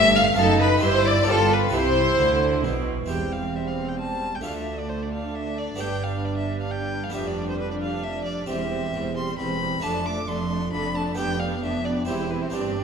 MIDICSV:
0, 0, Header, 1, 8, 480
1, 0, Start_track
1, 0, Key_signature, 0, "major"
1, 0, Tempo, 450789
1, 395, Time_signature, 3, 2, 24, 8
1, 13670, End_track
2, 0, Start_track
2, 0, Title_t, "Violin"
2, 0, Program_c, 0, 40
2, 0, Note_on_c, 0, 76, 125
2, 168, Note_on_c, 0, 77, 102
2, 184, Note_off_c, 0, 76, 0
2, 401, Note_off_c, 0, 77, 0
2, 432, Note_on_c, 0, 69, 100
2, 645, Note_off_c, 0, 69, 0
2, 652, Note_on_c, 0, 71, 91
2, 878, Note_off_c, 0, 71, 0
2, 908, Note_on_c, 0, 72, 112
2, 1146, Note_on_c, 0, 74, 95
2, 1162, Note_off_c, 0, 72, 0
2, 1370, Note_off_c, 0, 74, 0
2, 1388, Note_on_c, 0, 69, 119
2, 1629, Note_on_c, 0, 71, 86
2, 1645, Note_off_c, 0, 69, 0
2, 1855, Note_off_c, 0, 71, 0
2, 1861, Note_on_c, 0, 72, 96
2, 2801, Note_off_c, 0, 72, 0
2, 3289, Note_on_c, 0, 79, 59
2, 3537, Note_on_c, 0, 77, 57
2, 3553, Note_off_c, 0, 79, 0
2, 3788, Note_on_c, 0, 76, 57
2, 3804, Note_off_c, 0, 77, 0
2, 3908, Note_on_c, 0, 77, 48
2, 3924, Note_off_c, 0, 76, 0
2, 4137, Note_on_c, 0, 79, 54
2, 4153, Note_off_c, 0, 77, 0
2, 4240, Note_off_c, 0, 79, 0
2, 4246, Note_on_c, 0, 81, 69
2, 4632, Note_on_c, 0, 79, 48
2, 4648, Note_off_c, 0, 81, 0
2, 4724, Note_off_c, 0, 79, 0
2, 4730, Note_on_c, 0, 77, 58
2, 4850, Note_off_c, 0, 77, 0
2, 4857, Note_on_c, 0, 76, 47
2, 5105, Note_on_c, 0, 74, 50
2, 5121, Note_off_c, 0, 76, 0
2, 5207, Note_on_c, 0, 72, 56
2, 5223, Note_off_c, 0, 74, 0
2, 5352, Note_on_c, 0, 74, 47
2, 5368, Note_off_c, 0, 72, 0
2, 5463, Note_off_c, 0, 74, 0
2, 5467, Note_on_c, 0, 77, 57
2, 5698, Note_on_c, 0, 76, 68
2, 5714, Note_off_c, 0, 77, 0
2, 5943, Note_on_c, 0, 74, 63
2, 5959, Note_off_c, 0, 76, 0
2, 6175, Note_on_c, 0, 79, 73
2, 6191, Note_off_c, 0, 74, 0
2, 6429, Note_on_c, 0, 77, 62
2, 6445, Note_off_c, 0, 79, 0
2, 6653, Note_on_c, 0, 74, 61
2, 6669, Note_off_c, 0, 77, 0
2, 6771, Note_off_c, 0, 74, 0
2, 6784, Note_on_c, 0, 76, 56
2, 7011, Note_off_c, 0, 76, 0
2, 7037, Note_on_c, 0, 77, 55
2, 7146, Note_on_c, 0, 79, 70
2, 7162, Note_off_c, 0, 77, 0
2, 7493, Note_on_c, 0, 77, 56
2, 7509, Note_off_c, 0, 79, 0
2, 7602, Note_on_c, 0, 76, 69
2, 7618, Note_off_c, 0, 77, 0
2, 7739, Note_on_c, 0, 74, 61
2, 7755, Note_off_c, 0, 76, 0
2, 7971, Note_off_c, 0, 74, 0
2, 7976, Note_on_c, 0, 72, 61
2, 8087, Note_off_c, 0, 72, 0
2, 8093, Note_on_c, 0, 71, 66
2, 8205, Note_off_c, 0, 71, 0
2, 8210, Note_on_c, 0, 74, 58
2, 8256, Note_off_c, 0, 74, 0
2, 8322, Note_on_c, 0, 77, 64
2, 8557, Note_on_c, 0, 76, 77
2, 8573, Note_off_c, 0, 77, 0
2, 8772, Note_off_c, 0, 76, 0
2, 8779, Note_on_c, 0, 74, 67
2, 9023, Note_off_c, 0, 74, 0
2, 9045, Note_on_c, 0, 76, 72
2, 9743, Note_off_c, 0, 76, 0
2, 9760, Note_on_c, 0, 84, 63
2, 9985, Note_off_c, 0, 84, 0
2, 9991, Note_on_c, 0, 83, 85
2, 10459, Note_on_c, 0, 81, 75
2, 10475, Note_off_c, 0, 83, 0
2, 10707, Note_on_c, 0, 86, 66
2, 10723, Note_off_c, 0, 81, 0
2, 10944, Note_on_c, 0, 84, 69
2, 10960, Note_off_c, 0, 86, 0
2, 11411, Note_off_c, 0, 84, 0
2, 11417, Note_on_c, 0, 83, 78
2, 11662, Note_on_c, 0, 81, 65
2, 11678, Note_off_c, 0, 83, 0
2, 11888, Note_off_c, 0, 81, 0
2, 11895, Note_on_c, 0, 79, 79
2, 12134, Note_on_c, 0, 77, 64
2, 12150, Note_off_c, 0, 79, 0
2, 12379, Note_off_c, 0, 77, 0
2, 12387, Note_on_c, 0, 76, 74
2, 12616, Note_on_c, 0, 74, 63
2, 12632, Note_off_c, 0, 76, 0
2, 12847, Note_off_c, 0, 74, 0
2, 12853, Note_on_c, 0, 72, 66
2, 13095, Note_on_c, 0, 71, 55
2, 13111, Note_off_c, 0, 72, 0
2, 13227, Note_on_c, 0, 72, 57
2, 13243, Note_off_c, 0, 71, 0
2, 13349, Note_on_c, 0, 74, 67
2, 13365, Note_off_c, 0, 72, 0
2, 13670, Note_off_c, 0, 74, 0
2, 13670, End_track
3, 0, Start_track
3, 0, Title_t, "Violin section"
3, 0, Program_c, 1, 48
3, 161, Note_on_c, 1, 89, 103
3, 246, Note_off_c, 1, 89, 0
3, 387, Note_on_c, 1, 81, 123
3, 625, Note_off_c, 1, 81, 0
3, 632, Note_on_c, 1, 83, 110
3, 855, Note_on_c, 1, 84, 127
3, 872, Note_off_c, 1, 83, 0
3, 1097, Note_on_c, 1, 86, 106
3, 1104, Note_off_c, 1, 84, 0
3, 1335, Note_on_c, 1, 81, 121
3, 1341, Note_off_c, 1, 86, 0
3, 1583, Note_on_c, 1, 83, 95
3, 1586, Note_off_c, 1, 81, 0
3, 1823, Note_on_c, 1, 84, 111
3, 1831, Note_off_c, 1, 83, 0
3, 2801, Note_off_c, 1, 84, 0
3, 3286, Note_on_c, 1, 72, 41
3, 4689, Note_off_c, 1, 72, 0
3, 4731, Note_on_c, 1, 69, 45
3, 6140, Note_off_c, 1, 69, 0
3, 6184, Note_on_c, 1, 71, 49
3, 9002, Note_off_c, 1, 71, 0
3, 9038, Note_on_c, 1, 72, 49
3, 9254, Note_off_c, 1, 72, 0
3, 9267, Note_on_c, 1, 72, 43
3, 9501, Note_off_c, 1, 72, 0
3, 9513, Note_on_c, 1, 72, 45
3, 9737, Note_off_c, 1, 72, 0
3, 9749, Note_on_c, 1, 72, 45
3, 9981, Note_off_c, 1, 72, 0
3, 9993, Note_on_c, 1, 72, 49
3, 10209, Note_off_c, 1, 72, 0
3, 10222, Note_on_c, 1, 72, 44
3, 10448, Note_on_c, 1, 69, 50
3, 10461, Note_off_c, 1, 72, 0
3, 10693, Note_off_c, 1, 69, 0
3, 10712, Note_on_c, 1, 69, 42
3, 10932, Note_off_c, 1, 69, 0
3, 10945, Note_on_c, 1, 69, 45
3, 11174, Note_off_c, 1, 69, 0
3, 11186, Note_on_c, 1, 69, 43
3, 11406, Note_off_c, 1, 69, 0
3, 11419, Note_on_c, 1, 69, 53
3, 11630, Note_off_c, 1, 69, 0
3, 11643, Note_on_c, 1, 69, 42
3, 11888, Note_off_c, 1, 69, 0
3, 11903, Note_on_c, 1, 67, 53
3, 12134, Note_off_c, 1, 67, 0
3, 12147, Note_on_c, 1, 67, 45
3, 12380, Note_off_c, 1, 67, 0
3, 12392, Note_on_c, 1, 67, 45
3, 12613, Note_off_c, 1, 67, 0
3, 12626, Note_on_c, 1, 67, 41
3, 12845, Note_off_c, 1, 67, 0
3, 12858, Note_on_c, 1, 67, 48
3, 13099, Note_off_c, 1, 67, 0
3, 13112, Note_on_c, 1, 67, 37
3, 13335, Note_off_c, 1, 67, 0
3, 13348, Note_on_c, 1, 67, 47
3, 13586, Note_off_c, 1, 67, 0
3, 13599, Note_on_c, 1, 67, 38
3, 13670, Note_off_c, 1, 67, 0
3, 13670, End_track
4, 0, Start_track
4, 0, Title_t, "Violin section"
4, 0, Program_c, 2, 48
4, 0, Note_on_c, 2, 76, 109
4, 149, Note_off_c, 2, 76, 0
4, 170, Note_on_c, 2, 77, 94
4, 402, Note_off_c, 2, 77, 0
4, 406, Note_on_c, 2, 69, 106
4, 635, Note_on_c, 2, 71, 94
4, 640, Note_off_c, 2, 69, 0
4, 869, Note_off_c, 2, 71, 0
4, 869, Note_on_c, 2, 72, 95
4, 1104, Note_on_c, 2, 74, 93
4, 1111, Note_off_c, 2, 72, 0
4, 1341, Note_on_c, 2, 69, 94
4, 1349, Note_off_c, 2, 74, 0
4, 1584, Note_on_c, 2, 71, 82
4, 1589, Note_off_c, 2, 69, 0
4, 1827, Note_off_c, 2, 71, 0
4, 1830, Note_on_c, 2, 72, 104
4, 2805, Note_off_c, 2, 72, 0
4, 3276, Note_on_c, 2, 60, 49
4, 4684, Note_off_c, 2, 60, 0
4, 4736, Note_on_c, 2, 62, 46
4, 7563, Note_off_c, 2, 62, 0
4, 7602, Note_on_c, 2, 62, 49
4, 9008, Note_off_c, 2, 62, 0
4, 9039, Note_on_c, 2, 60, 49
4, 9256, Note_off_c, 2, 60, 0
4, 9269, Note_on_c, 2, 60, 47
4, 9490, Note_off_c, 2, 60, 0
4, 9503, Note_on_c, 2, 60, 46
4, 9738, Note_off_c, 2, 60, 0
4, 9751, Note_on_c, 2, 60, 38
4, 9981, Note_off_c, 2, 60, 0
4, 9994, Note_on_c, 2, 60, 42
4, 10228, Note_off_c, 2, 60, 0
4, 10241, Note_on_c, 2, 60, 39
4, 10470, Note_off_c, 2, 60, 0
4, 10473, Note_on_c, 2, 62, 54
4, 10695, Note_off_c, 2, 62, 0
4, 10707, Note_on_c, 2, 62, 45
4, 10921, Note_off_c, 2, 62, 0
4, 10934, Note_on_c, 2, 62, 44
4, 11162, Note_off_c, 2, 62, 0
4, 11174, Note_on_c, 2, 62, 36
4, 11403, Note_off_c, 2, 62, 0
4, 11416, Note_on_c, 2, 62, 48
4, 11646, Note_off_c, 2, 62, 0
4, 11659, Note_on_c, 2, 62, 40
4, 11896, Note_off_c, 2, 62, 0
4, 11909, Note_on_c, 2, 62, 48
4, 12134, Note_off_c, 2, 62, 0
4, 12146, Note_on_c, 2, 62, 42
4, 12373, Note_off_c, 2, 62, 0
4, 12385, Note_on_c, 2, 62, 42
4, 12610, Note_off_c, 2, 62, 0
4, 12623, Note_on_c, 2, 62, 39
4, 12860, Note_off_c, 2, 62, 0
4, 12867, Note_on_c, 2, 64, 47
4, 13090, Note_off_c, 2, 64, 0
4, 13102, Note_on_c, 2, 64, 37
4, 13344, Note_off_c, 2, 64, 0
4, 13355, Note_on_c, 2, 62, 49
4, 13587, Note_off_c, 2, 62, 0
4, 13600, Note_on_c, 2, 62, 36
4, 13670, Note_off_c, 2, 62, 0
4, 13670, End_track
5, 0, Start_track
5, 0, Title_t, "Harpsichord"
5, 0, Program_c, 3, 6
5, 0, Note_on_c, 3, 43, 71
5, 0, Note_on_c, 3, 62, 64
5, 0, Note_on_c, 3, 69, 66
5, 341, Note_off_c, 3, 62, 0
5, 349, Note_off_c, 3, 69, 0
5, 356, Note_on_c, 3, 60, 66
5, 357, Note_off_c, 3, 43, 0
5, 371, Note_on_c, 3, 63, 64
5, 390, Note_on_c, 3, 69, 59
5, 404, Note_on_c, 3, 42, 70
5, 820, Note_off_c, 3, 60, 0
5, 833, Note_on_c, 3, 60, 59
5, 835, Note_off_c, 3, 42, 0
5, 847, Note_off_c, 3, 63, 0
5, 854, Note_on_c, 3, 64, 61
5, 857, Note_off_c, 3, 69, 0
5, 864, Note_on_c, 3, 67, 57
5, 885, Note_on_c, 3, 43, 71
5, 1315, Note_on_c, 3, 62, 59
5, 1317, Note_off_c, 3, 43, 0
5, 1319, Note_off_c, 3, 60, 0
5, 1329, Note_off_c, 3, 64, 0
5, 1332, Note_on_c, 3, 65, 63
5, 1335, Note_off_c, 3, 67, 0
5, 1348, Note_on_c, 3, 67, 64
5, 1363, Note_on_c, 3, 43, 69
5, 1795, Note_on_c, 3, 60, 64
5, 1800, Note_off_c, 3, 43, 0
5, 1803, Note_off_c, 3, 62, 0
5, 1812, Note_off_c, 3, 65, 0
5, 1813, Note_on_c, 3, 64, 61
5, 1820, Note_off_c, 3, 67, 0
5, 1831, Note_on_c, 3, 67, 59
5, 1845, Note_on_c, 3, 48, 65
5, 2284, Note_off_c, 3, 48, 0
5, 2328, Note_on_c, 3, 50, 65
5, 2768, Note_off_c, 3, 50, 0
5, 2816, Note_on_c, 3, 47, 66
5, 3229, Note_off_c, 3, 60, 0
5, 3238, Note_off_c, 3, 64, 0
5, 3247, Note_off_c, 3, 67, 0
5, 3254, Note_off_c, 3, 47, 0
5, 3257, Note_on_c, 3, 60, 31
5, 3275, Note_on_c, 3, 64, 30
5, 3288, Note_on_c, 3, 67, 32
5, 3304, Note_on_c, 3, 40, 30
5, 4674, Note_off_c, 3, 60, 0
5, 4683, Note_off_c, 3, 64, 0
5, 4689, Note_off_c, 3, 67, 0
5, 4698, Note_off_c, 3, 40, 0
5, 4699, Note_on_c, 3, 57, 32
5, 4717, Note_on_c, 3, 65, 29
5, 4729, Note_on_c, 3, 69, 33
5, 4745, Note_on_c, 3, 38, 35
5, 6111, Note_off_c, 3, 57, 0
5, 6120, Note_off_c, 3, 65, 0
5, 6125, Note_off_c, 3, 69, 0
5, 6128, Note_on_c, 3, 59, 30
5, 6133, Note_off_c, 3, 38, 0
5, 6143, Note_on_c, 3, 62, 36
5, 6157, Note_on_c, 3, 67, 33
5, 6172, Note_on_c, 3, 43, 36
5, 7541, Note_off_c, 3, 59, 0
5, 7548, Note_off_c, 3, 62, 0
5, 7555, Note_off_c, 3, 67, 0
5, 7559, Note_on_c, 3, 59, 36
5, 7563, Note_off_c, 3, 43, 0
5, 7573, Note_on_c, 3, 62, 37
5, 7590, Note_on_c, 3, 67, 36
5, 7605, Note_on_c, 3, 41, 36
5, 8973, Note_off_c, 3, 59, 0
5, 8980, Note_off_c, 3, 62, 0
5, 8988, Note_off_c, 3, 67, 0
5, 8996, Note_off_c, 3, 41, 0
5, 9012, Note_on_c, 3, 60, 34
5, 9022, Note_on_c, 3, 67, 37
5, 9045, Note_on_c, 3, 40, 38
5, 9428, Note_off_c, 3, 40, 0
5, 9521, Note_on_c, 3, 40, 42
5, 9905, Note_off_c, 3, 40, 0
5, 10003, Note_on_c, 3, 40, 43
5, 10386, Note_off_c, 3, 40, 0
5, 10414, Note_off_c, 3, 60, 0
5, 10420, Note_off_c, 3, 67, 0
5, 10435, Note_on_c, 3, 57, 39
5, 10450, Note_on_c, 3, 62, 38
5, 10467, Note_on_c, 3, 65, 34
5, 10483, Note_on_c, 3, 41, 41
5, 10864, Note_off_c, 3, 41, 0
5, 10957, Note_on_c, 3, 41, 39
5, 11339, Note_off_c, 3, 41, 0
5, 11442, Note_on_c, 3, 41, 43
5, 11822, Note_off_c, 3, 41, 0
5, 11843, Note_off_c, 3, 57, 0
5, 11850, Note_off_c, 3, 62, 0
5, 11859, Note_off_c, 3, 65, 0
5, 11868, Note_on_c, 3, 59, 39
5, 11883, Note_on_c, 3, 62, 34
5, 11901, Note_on_c, 3, 67, 35
5, 11916, Note_on_c, 3, 41, 38
5, 12299, Note_off_c, 3, 41, 0
5, 12392, Note_on_c, 3, 41, 42
5, 12779, Note_off_c, 3, 41, 0
5, 12818, Note_off_c, 3, 59, 0
5, 12826, Note_off_c, 3, 62, 0
5, 12832, Note_on_c, 3, 60, 35
5, 12835, Note_off_c, 3, 67, 0
5, 12846, Note_on_c, 3, 64, 35
5, 12863, Note_on_c, 3, 67, 38
5, 12880, Note_on_c, 3, 40, 40
5, 13268, Note_off_c, 3, 40, 0
5, 13299, Note_off_c, 3, 60, 0
5, 13311, Note_on_c, 3, 60, 38
5, 13326, Note_on_c, 3, 62, 33
5, 13328, Note_off_c, 3, 64, 0
5, 13330, Note_off_c, 3, 67, 0
5, 13343, Note_on_c, 3, 67, 33
5, 13359, Note_on_c, 3, 43, 37
5, 13670, Note_off_c, 3, 43, 0
5, 13670, Note_off_c, 3, 60, 0
5, 13670, Note_off_c, 3, 62, 0
5, 13670, Note_off_c, 3, 67, 0
5, 13670, End_track
6, 0, Start_track
6, 0, Title_t, "Viola section"
6, 0, Program_c, 4, 48
6, 0, Note_on_c, 4, 57, 84
6, 388, Note_off_c, 4, 57, 0
6, 402, Note_on_c, 4, 63, 87
6, 844, Note_off_c, 4, 63, 0
6, 878, Note_on_c, 4, 64, 86
6, 1356, Note_off_c, 4, 64, 0
6, 1360, Note_on_c, 4, 65, 82
6, 1841, Note_off_c, 4, 65, 0
6, 1850, Note_on_c, 4, 64, 82
6, 3060, Note_off_c, 4, 64, 0
6, 3296, Note_on_c, 4, 55, 44
6, 4694, Note_off_c, 4, 55, 0
6, 4731, Note_on_c, 4, 57, 43
6, 6141, Note_off_c, 4, 57, 0
6, 6164, Note_on_c, 4, 55, 47
6, 9024, Note_off_c, 4, 55, 0
6, 9036, Note_on_c, 4, 55, 46
6, 9268, Note_off_c, 4, 55, 0
6, 9281, Note_on_c, 4, 55, 43
6, 9496, Note_off_c, 4, 55, 0
6, 9509, Note_on_c, 4, 55, 45
6, 9733, Note_off_c, 4, 55, 0
6, 9746, Note_on_c, 4, 55, 50
6, 9973, Note_off_c, 4, 55, 0
6, 9986, Note_on_c, 4, 55, 47
6, 10209, Note_off_c, 4, 55, 0
6, 10222, Note_on_c, 4, 55, 38
6, 10461, Note_off_c, 4, 55, 0
6, 10464, Note_on_c, 4, 57, 53
6, 10697, Note_off_c, 4, 57, 0
6, 10710, Note_on_c, 4, 57, 46
6, 10943, Note_off_c, 4, 57, 0
6, 10958, Note_on_c, 4, 57, 48
6, 11180, Note_off_c, 4, 57, 0
6, 11193, Note_on_c, 4, 57, 46
6, 11419, Note_off_c, 4, 57, 0
6, 11432, Note_on_c, 4, 57, 48
6, 11655, Note_off_c, 4, 57, 0
6, 11667, Note_on_c, 4, 57, 39
6, 11900, Note_off_c, 4, 57, 0
6, 11909, Note_on_c, 4, 59, 47
6, 12134, Note_off_c, 4, 59, 0
6, 12147, Note_on_c, 4, 59, 48
6, 12366, Note_off_c, 4, 59, 0
6, 12379, Note_on_c, 4, 59, 42
6, 12603, Note_off_c, 4, 59, 0
6, 12616, Note_on_c, 4, 59, 47
6, 12855, Note_on_c, 4, 60, 44
6, 12856, Note_off_c, 4, 59, 0
6, 13089, Note_off_c, 4, 60, 0
6, 13102, Note_on_c, 4, 60, 39
6, 13333, Note_off_c, 4, 60, 0
6, 13346, Note_on_c, 4, 60, 48
6, 13580, Note_off_c, 4, 60, 0
6, 13593, Note_on_c, 4, 60, 40
6, 13670, Note_off_c, 4, 60, 0
6, 13670, End_track
7, 0, Start_track
7, 0, Title_t, "Cello section"
7, 0, Program_c, 5, 48
7, 0, Note_on_c, 5, 43, 103
7, 389, Note_off_c, 5, 43, 0
7, 401, Note_on_c, 5, 42, 99
7, 844, Note_off_c, 5, 42, 0
7, 876, Note_on_c, 5, 43, 74
7, 1344, Note_off_c, 5, 43, 0
7, 1356, Note_on_c, 5, 43, 88
7, 1829, Note_off_c, 5, 43, 0
7, 1838, Note_on_c, 5, 48, 86
7, 2313, Note_off_c, 5, 48, 0
7, 2327, Note_on_c, 5, 50, 81
7, 2801, Note_off_c, 5, 50, 0
7, 2808, Note_on_c, 5, 47, 88
7, 3292, Note_off_c, 5, 47, 0
7, 3294, Note_on_c, 5, 40, 54
7, 4692, Note_off_c, 5, 40, 0
7, 4729, Note_on_c, 5, 38, 45
7, 6168, Note_off_c, 5, 38, 0
7, 6175, Note_on_c, 5, 43, 47
7, 7578, Note_off_c, 5, 43, 0
7, 7605, Note_on_c, 5, 41, 50
7, 9009, Note_off_c, 5, 41, 0
7, 9039, Note_on_c, 5, 40, 53
7, 9459, Note_off_c, 5, 40, 0
7, 9520, Note_on_c, 5, 40, 53
7, 9939, Note_off_c, 5, 40, 0
7, 9995, Note_on_c, 5, 40, 60
7, 10415, Note_off_c, 5, 40, 0
7, 10472, Note_on_c, 5, 41, 52
7, 10892, Note_off_c, 5, 41, 0
7, 10946, Note_on_c, 5, 41, 57
7, 11368, Note_off_c, 5, 41, 0
7, 11423, Note_on_c, 5, 41, 60
7, 11846, Note_off_c, 5, 41, 0
7, 11902, Note_on_c, 5, 41, 55
7, 12325, Note_off_c, 5, 41, 0
7, 12374, Note_on_c, 5, 41, 47
7, 12804, Note_off_c, 5, 41, 0
7, 12857, Note_on_c, 5, 40, 55
7, 13291, Note_off_c, 5, 40, 0
7, 13342, Note_on_c, 5, 43, 54
7, 13670, Note_off_c, 5, 43, 0
7, 13670, End_track
8, 0, Start_track
8, 0, Title_t, "Double bass section"
8, 0, Program_c, 6, 48
8, 0, Note_on_c, 6, 31, 83
8, 390, Note_off_c, 6, 31, 0
8, 401, Note_on_c, 6, 30, 83
8, 843, Note_off_c, 6, 30, 0
8, 879, Note_on_c, 6, 31, 87
8, 1342, Note_off_c, 6, 31, 0
8, 1355, Note_on_c, 6, 31, 77
8, 1828, Note_off_c, 6, 31, 0
8, 1836, Note_on_c, 6, 36, 78
8, 2313, Note_off_c, 6, 36, 0
8, 2329, Note_on_c, 6, 38, 80
8, 2802, Note_off_c, 6, 38, 0
8, 2813, Note_on_c, 6, 35, 77
8, 3288, Note_on_c, 6, 28, 47
8, 3295, Note_off_c, 6, 35, 0
8, 4690, Note_off_c, 6, 28, 0
8, 4732, Note_on_c, 6, 38, 38
8, 6166, Note_on_c, 6, 31, 47
8, 6170, Note_off_c, 6, 38, 0
8, 7573, Note_off_c, 6, 31, 0
8, 7600, Note_on_c, 6, 29, 42
8, 9007, Note_off_c, 6, 29, 0
8, 9035, Note_on_c, 6, 28, 55
8, 9457, Note_off_c, 6, 28, 0
8, 9512, Note_on_c, 6, 28, 56
8, 9935, Note_off_c, 6, 28, 0
8, 9991, Note_on_c, 6, 28, 50
8, 10413, Note_off_c, 6, 28, 0
8, 10464, Note_on_c, 6, 29, 54
8, 10888, Note_off_c, 6, 29, 0
8, 10946, Note_on_c, 6, 29, 57
8, 11368, Note_off_c, 6, 29, 0
8, 11426, Note_on_c, 6, 29, 51
8, 11847, Note_off_c, 6, 29, 0
8, 11903, Note_on_c, 6, 29, 54
8, 12326, Note_off_c, 6, 29, 0
8, 12379, Note_on_c, 6, 29, 52
8, 12806, Note_off_c, 6, 29, 0
8, 12867, Note_on_c, 6, 28, 46
8, 13296, Note_off_c, 6, 28, 0
8, 13358, Note_on_c, 6, 31, 47
8, 13670, Note_off_c, 6, 31, 0
8, 13670, End_track
0, 0, End_of_file